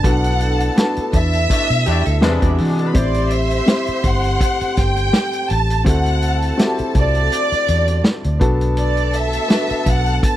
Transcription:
0.00 2.19 A3 medium
0.00 0.70 B3 medium
0.00 2.92 D4 medium
0.00 1.82 A5 loud
0.04 0.69 B1 loud
0.04 0.71 D4 medium
0.04 2.92 E4 medium
0.04 0.71 F#4 medium
0.04 1.83 A4 loud
0.04 0.71 A4 medium
0.04 0.78 F#5 loud
0.04 kick medium
0.04 closed hi-hat medium
0.24 closed hi-hat medium
0.40 closed hi-hat medium
0.60 closed hi-hat medium
0.76 2.09 B3 medium
0.76 2.09 D4 medium
0.76 2.10 F#4 medium
0.76 2.10 A4 medium
0.76 snare loud
0.76 closed hi-hat medium
0.96 muted fingered electric bass stroke soft
0.96 closed hi-hat soft
1.13 1.46 E2 medium
1.13 2.55 E5 loud
1.13 kick medium
1.13 closed hi-hat medium
1.33 closed hi-hat soft
1.50 1.66 B2 medium
1.50 1.66 A3 medium
1.50 1.66 D4 medium
1.50 kick medium
1.50 closed hi-hat loud
1.70 1.85 B2 medium
1.70 closed hi-hat medium
1.86 2.04 E2 medium
1.86 2.02 B2 medium
1.86 2.02 A3 medium
1.86 2.05 B3 medium
1.86 2.02 D4 medium
1.86 2.05 G4 medium
1.86 closed hi-hat medium
2.05 2.23 D2 medium
2.05 2.22 A4 medium
2.05 closed hi-hat medium
2.21 2.40 E2 loud
2.21 2.91 B2 medium
2.21 2.88 C3 medium
2.21 2.91 G#3 medium
2.21 2.95 G#3 medium
2.21 2.88 D4 medium
2.21 2.92 D4 medium
2.21 2.41 E4 medium
2.21 2.30 G4 medium
2.21 2.42 B4 medium
2.21 2.89 B4 medium
2.21 2.41 C5 medium
2.21 2.42 B5 medium
2.21 snare loud
2.21 closed hi-hat medium
2.29 2.42 C4 medium
2.29 2.92 G#4 medium
2.29 2.42 C5 medium
2.41 2.57 E2 medium
2.41 2.50 D4 medium
2.41 2.93 F#4 medium
2.41 2.50 D5 medium
2.41 2.93 D5 medium
2.41 kick medium
2.41 closed hi-hat medium
2.51 2.59 E4 medium
2.51 2.59 E5 medium
2.58 2.92 E3 medium
2.58 2.69 F#4 medium
2.58 2.69 F#5 medium
2.58 open hi-hat medium
2.69 2.79 G#4 medium
2.69 2.78 G#5 medium
2.79 2.87 A4 medium
2.79 2.87 A5 medium
2.79 closed hi-hat medium
2.87 2.95 B4 medium
2.87 2.96 B5 medium
2.94 3.60 A1 loud
2.94 10.37 A3 medium
2.94 3.61 C4 medium
2.94 8.37 C4 medium
2.94 3.61 E4 medium
2.94 3.62 G4 medium
2.94 5.84 G4 medium
2.94 5.46 C5 medium
2.94 3.62 C5 medium
2.94 3.30 D5 medium
2.94 5.46 C6 loud
2.94 kick loud
2.94 closed hi-hat medium
3.14 closed hi-hat medium
3.31 4.05 E5 medium
3.31 closed hi-hat medium
3.51 closed hi-hat medium
3.66 5.00 C4 medium
3.66 5.00 E4 medium
3.66 5.01 G4 medium
3.66 5.01 C5 medium
3.66 snare loud
3.66 closed hi-hat medium
3.87 muted fingered electric bass stroke soft
3.87 closed hi-hat soft
4.03 4.37 G1 medium
4.03 4.78 F#5 loud
4.03 kick medium
4.03 closed hi-hat medium
4.24 closed hi-hat soft
4.41 kick medium
4.41 closed hi-hat medium
4.61 muted fingered electric bass stroke soft
4.61 closed hi-hat soft
4.77 5.10 G1 medium
4.77 5.50 G5 loud
4.77 kick medium
4.77 snare soft
4.77 closed hi-hat medium
4.97 closed hi-hat medium
5.13 snare loud
5.13 closed hi-hat medium
5.33 closed hi-hat medium
5.50 5.83 A1 loud
5.50 5.86 A5 loud
5.50 closed hi-hat medium
5.70 closed hi-hat medium
5.84 6.51 D2 loud
5.84 10.37 D3 medium
5.84 6.52 C4 medium
5.84 6.52 E4 medium
5.84 8.39 E4 medium
5.84 6.53 F#4 medium
5.84 8.39 F#4 medium
5.84 8.01 A4 loud
5.84 6.53 A4 medium
5.84 6.55 F#5 medium
5.84 8.01 A5 loud
5.84 kick medium
5.84 closed hi-hat medium
6.06 closed hi-hat soft
6.22 closed hi-hat medium
6.42 closed hi-hat medium
6.58 7.91 C4 medium
6.58 7.91 E4 medium
6.58 7.92 F#4 medium
6.58 6.67 G4 medium
6.58 snare loud
6.58 closed hi-hat medium
6.67 7.95 A4 medium
6.78 muted fingered electric bass stroke soft
6.78 closed hi-hat soft
6.95 7.28 C2 loud
6.95 8.38 D5 loud
6.95 kick medium
6.95 closed hi-hat medium
7.15 closed hi-hat soft
7.32 closed hi-hat loud
7.52 muted fingered electric bass stroke soft
7.52 closed hi-hat soft
7.68 8.01 E2 medium
7.68 closed hi-hat medium
7.88 closed hi-hat soft
8.04 snare loud
8.04 closed hi-hat medium
8.24 8.39 D2 medium
8.24 closed hi-hat medium
8.39 9.37 B1 medium
8.39 9.39 B3 medium
8.39 10.37 B3 medium
8.39 9.40 D4 medium
8.39 9.40 F#4 medium
8.39 10.37 A4 loud
8.39 9.41 A4 medium
8.39 10.37 A5 loud
8.39 kick loud
8.39 closed hi-hat medium
8.61 closed hi-hat medium
8.77 9.12 D5 medium
8.77 closed hi-hat medium
8.97 closed hi-hat medium
9.13 9.87 E5 loud
9.13 closed hi-hat medium
9.33 closed hi-hat medium
9.48 10.37 B3 medium
9.48 10.37 D4 medium
9.48 10.37 F#4 medium
9.48 10.37 A4 medium
9.48 snare loud
9.48 closed hi-hat medium
9.70 muted fingered electric bass stroke soft
9.70 closed hi-hat soft
9.86 10.19 B1 medium
9.86 10.24 F#5 loud
9.86 kick medium
9.86 closed hi-hat medium
10.06 closed hi-hat soft
10.23 10.37 A5 loud
10.23 kick medium
10.23 closed hi-hat medium

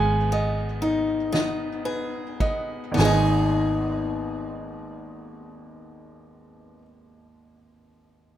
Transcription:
0.00 2.94 G#1 loud
0.00 2.93 G#3 medium
0.00 0.32 B3 medium
0.00 0.81 D#4 medium
0.00 1.81 G#5 medium
0.32 1.32 B3 medium
0.32 1.31 D#5 medium
0.32 ride soft
0.82 3.00 D#4 medium
0.82 2.93 D#4 medium
0.82 ride soft
1.32 2.40 B3 medium
1.32 2.39 D#5 medium
1.32 snare loud
1.32 ride medium
1.85 3.05 G#4 medium
1.85 2.94 B4 medium
1.85 ride soft
2.40 2.94 B3 medium
2.40 2.96 D#5 medium
2.40 kick loud
2.40 ride soft
2.92 6.75 G#1 medium
2.92 6.77 D#2 medium
2.92 6.82 B3 medium
2.96 6.81 G#1 medium
2.96 6.80 D#3 medium
2.96 6.82 B3 soft
2.96 6.83 G#5 medium
2.96 snare loud
2.96 open hi-hat medium
3.00 6.88 D#4 medium
3.00 6.85 G#4 medium
3.00 6.87 D#5 medium
3.05 6.93 G#4 medium

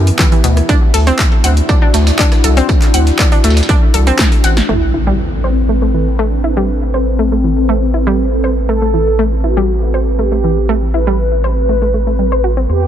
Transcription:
0.00 0.11 F#2 loud
0.00 4.74 A2 medium
0.00 4.74 E3 medium
0.00 0.65 B3 medium
0.00 4.65 E4 medium
0.00 0.65 G4 medium
0.07 closed hi-hat soft
0.19 0.28 E3 medium
0.19 kick loud
0.19 snare loud
0.19 clap loud
0.19 closed hi-hat soft
0.19 tambourine medium
0.32 0.40 E3 medium
0.32 closed hi-hat soft
0.44 0.61 D2 medium
0.44 0.56 B2 medium
0.44 closed hi-hat loud
0.44 tambourine medium
0.57 cross-stick medium
0.57 closed hi-hat soft
0.69 0.74 D4 loud
0.69 4.65 D4 medium
0.69 4.65 F#4 medium
0.69 kick loud
0.69 closed hi-hat soft
0.69 tambourine loud
0.94 1.11 D2 loud
0.94 0.99 A4 medium
0.94 closed hi-hat loud
0.94 open hi-hat medium
1.07 1.18 C4 loud
1.07 closed hi-hat soft
1.19 kick loud
1.19 snare loud
1.19 clap loud
1.19 closed hi-hat soft
1.19 tambourine medium
1.32 closed hi-hat soft
1.44 1.61 D2 medium
1.44 1.53 F#5 medium
1.44 closed hi-hat loud
1.44 tambourine medium
1.57 closed hi-hat soft
1.69 1.78 D4 medium
1.69 kick loud
1.69 closed hi-hat soft
1.69 tambourine medium
1.82 1.90 D4 medium
1.94 2.11 D2 medium
1.94 2.06 A3 medium
1.94 snare loud
1.94 closed hi-hat loud
1.94 tambourine medium
2.07 snare loud
2.07 closed hi-hat soft
2.07 tambourine medium
2.19 2.24 D4 loud
2.19 kick loud
2.19 snare loud
2.19 clap loud
2.19 closed hi-hat soft
2.19 tambourine medium
2.32 cross-stick medium
2.32 snare loud
2.32 closed hi-hat soft
2.32 tambourine medium
2.44 2.61 C2 medium
2.44 2.49 A4 medium
2.44 closed hi-hat loud
2.44 tambourine medium
2.57 2.68 C4 loud
2.57 closed hi-hat soft
2.69 kick loud
2.69 closed hi-hat soft
2.69 tambourine medium
2.82 snare soft
2.82 clap soft
2.82 closed hi-hat medium
2.94 3.11 D2 medium
2.94 3.03 F#5 medium
2.94 closed hi-hat loud
2.94 tambourine medium
3.07 snare soft
3.07 closed hi-hat soft
3.19 3.28 D4 medium
3.19 kick loud
3.19 cross-stick medium
3.19 snare loud
3.19 clap loud
3.19 closed hi-hat soft
3.19 tambourine medium
3.32 3.40 D4 medium
3.32 closed hi-hat soft
3.44 3.61 D2 loud
3.44 3.56 A3 medium
3.44 snare medium
3.44 closed hi-hat loud
3.44 tambourine medium
3.50 snare medium
3.50 tambourine medium
3.57 snare medium
3.57 closed hi-hat soft
3.57 tambourine medium
3.63 snare medium
3.63 tambourine medium
3.69 3.74 D4 loud
3.69 kick loud
3.69 closed hi-hat soft
3.69 tambourine loud
3.94 4.11 C2 loud
3.94 3.99 A4 medium
3.94 closed hi-hat loud
3.94 tambourine medium
4.07 4.18 C4 loud
4.07 cross-stick medium
4.07 closed hi-hat soft
4.19 kick loud
4.19 snare loud
4.19 clap loud
4.19 closed hi-hat soft
4.19 tambourine medium
4.32 closed hi-hat soft
4.44 4.61 A1 medium
4.44 4.53 F#5 medium
4.44 closed hi-hat loud
4.44 tambourine medium
4.57 snare medium
4.57 closed hi-hat soft
4.69 12.67 A1 medium
4.69 4.74 A3 loud
4.69 12.65 C4 medium
4.69 5.34 E4 loud
4.69 12.65 A4 medium
4.69 12.87 B4 medium
4.69 impact medium
4.94 4.99 E4 medium
5.07 5.18 G3 loud
5.44 6.09 C4 medium
5.44 5.53 C5 medium
5.69 5.78 A3 medium
5.82 5.90 A3 medium
5.94 6.06 E3 medium
6.19 6.24 A3 loud
6.19 6.84 D4 medium
6.44 6.49 E4 medium
6.57 6.68 G3 loud
6.94 8.59 C4 loud
6.94 7.03 C5 medium
7.19 7.28 A3 medium
7.32 7.40 A3 medium
7.44 7.56 E3 medium
7.69 7.74 A3 loud
7.94 7.99 E4 medium
8.07 8.18 G3 loud
8.44 8.53 C5 medium
8.69 8.78 A3 medium
8.69 9.34 A4 loud
8.82 8.90 A3 medium
8.94 9.06 E3 medium
9.19 9.24 A3 loud
9.44 9.49 E4 medium
9.44 10.09 F#4 medium
9.57 9.68 G3 loud
9.94 10.03 C5 medium
10.19 10.28 A3 medium
10.19 10.84 G4 medium
10.32 10.40 A3 medium
10.44 10.56 E3 medium
10.69 10.74 A3 loud
10.94 10.99 E4 medium
10.94 12.59 B4 medium
11.07 11.18 G3 medium
11.44 11.53 C5 medium
11.69 11.78 A3 medium
11.82 11.90 A3 medium
11.94 12.06 A3 medium
12.07 12.18 A3 medium
12.19 12.31 G3 medium
12.32 12.37 C5 medium
12.44 12.53 F#4 medium
12.57 12.65 C4 medium
12.69 12.87 E2 medium
12.69 12.87 G3 medium
12.69 12.87 E4 medium
12.69 12.87 G4 loud

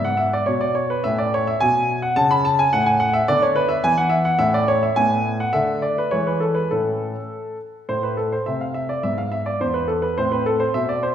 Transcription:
0.00 0.36 G#2 medium
0.00 1.00 B3 soft
0.05 0.19 F#5 medium
0.17 0.32 E5 medium
0.33 0.48 D5 medium
0.46 0.92 B2 medium
0.46 0.61 C#5 medium
0.61 0.75 D5 medium
0.75 0.89 C#5 medium
0.90 1.04 B4 medium
1.04 1.50 A2 medium
1.04 2.12 C#4 soft
1.04 1.18 E5 medium
1.18 1.32 D5 medium
1.34 1.47 C#5 medium
1.47 1.61 E5 medium
1.60 2.06 B2 medium
1.60 1.98 G#5 loud
2.02 2.16 F#5 medium
2.16 2.61 C#3 medium
2.16 3.25 C#4 soft
2.16 2.30 A5 loud
2.31 2.44 B5 medium
2.45 2.58 A5 loud
2.59 2.73 G#5 medium
2.73 3.18 A2 medium
2.73 2.86 F#5 loud
2.86 3.00 G#5 medium
3.00 3.14 F#5 medium
3.13 3.28 E5 medium
3.28 3.74 D3 medium
3.28 3.81 B3 soft
3.28 3.42 D5 loud
3.42 3.56 C#5 medium
3.56 3.70 B4 medium
3.69 3.84 E5 medium
3.83 4.30 E3 medium
3.83 4.37 B3 soft
3.83 3.98 G#5 loud
3.98 4.12 F#5 medium
4.10 4.26 E5 medium
4.25 4.40 F#5 medium
4.39 4.86 A2 medium
4.39 4.93 C#4 soft
4.39 4.54 E5 loud
4.54 4.69 D5 medium
4.68 4.83 C#5 medium
4.83 4.98 E5 medium
4.96 5.43 A2 medium
4.96 5.51 B3 soft
4.96 5.36 G#5 loud
5.40 5.55 F#5 medium
5.53 6.01 D3 medium
5.53 6.08 A3 soft
5.53 5.83 E5 medium
5.82 5.98 D5 medium
5.98 6.13 B4 medium
6.11 6.60 E3 medium
6.11 6.67 G#3 soft
6.11 6.27 C#5 medium
6.27 6.42 B4 medium
6.40 6.56 A4 medium
6.55 6.71 B4 medium
6.71 7.13 A2 soft
6.71 7.19 A3 soft
6.71 7.19 C#4 soft
6.71 7.56 A4 medium
7.89 8.35 A2 soft
7.89 8.99 A3 soft
7.89 8.04 C5 medium
8.03 8.18 B4 medium
8.17 8.32 A4 medium
8.32 8.47 C5 medium
8.46 8.93 C3 soft
8.46 8.61 E5 medium
8.61 8.75 F5 medium
8.74 8.89 E5 medium
8.89 9.04 D5 medium
9.03 9.49 G#2 soft
9.03 10.14 B3 soft
9.03 9.18 E5 medium
9.18 9.32 F5 medium
9.32 9.46 E5 medium
9.46 9.60 D5 medium
9.60 10.06 E2 soft
9.60 9.75 C5 medium
9.74 9.89 B4 medium
9.88 10.03 A4 medium
10.02 10.17 B4 medium
10.18 10.64 A2 soft
10.18 11.15 C4 soft
10.18 10.32 C5 medium
10.32 10.46 B4 medium
10.46 10.60 A4 medium
10.60 10.74 C5 medium
10.74 11.15 B2 medium
10.74 10.89 E5 medium
10.89 11.03 D5 medium
11.03 11.15 C5 medium

